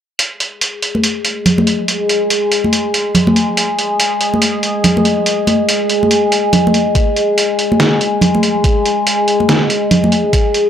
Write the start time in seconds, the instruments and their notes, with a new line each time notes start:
0.19 synth drone G#3 G#4, closed hi-hat
0.40 closed hi-hat
0.61 closed hi-hat
0.82 closed hi-hat
0.95 high conga
1.04 closed hi-hat
1.25 closed hi-hat
1.46 closed hi-hat, low conga
1.58 high conga
1.67 closed hi-hat
1.88 closed hi-hat
2.09 closed hi-hat
2.30 closed hi-hat
2.52 closed hi-hat
2.64 high conga
2.73 closed hi-hat
2.94 closed hi-hat
3.15 closed hi-hat, low conga
3.27 high conga
3.36 closed hi-hat
3.57 closed hi-hat
3.79 closed hi-hat
4.00 closed hi-hat
4.21 closed hi-hat
4.34 high conga
4.42 closed hi-hat
4.63 closed hi-hat
4.84 closed hi-hat, low conga
4.97 high conga
5.05 closed hi-hat
5.26 closed hi-hat
5.47 closed hi-hat, high conga
5.69 closed hi-hat
5.90 closed hi-hat
6.03 high conga
6.11 closed hi-hat
6.32 closed hi-hat
6.53 closed hi-hat, low conga
6.67 high conga
6.74 closed hi-hat
6.95 kick, closed hi-hat
7.16 closed hi-hat
7.38 closed hi-hat
7.59 closed hi-hat
7.72 high conga
7.80 snare, closed hi-hat
8.01 closed hi-hat
8.21 closed hi-hat, low conga
8.35 high conga
8.43 closed hi-hat
8.64 kick, closed hi-hat
8.86 closed hi-hat
9.07 closed hi-hat
9.28 closed hi-hat
9.40 high conga
9.49 snare, closed hi-hat
9.70 closed hi-hat
9.91 closed hi-hat, low conga
10.04 high conga
10.12 closed hi-hat
10.33 kick, closed hi-hat
10.54 closed hi-hat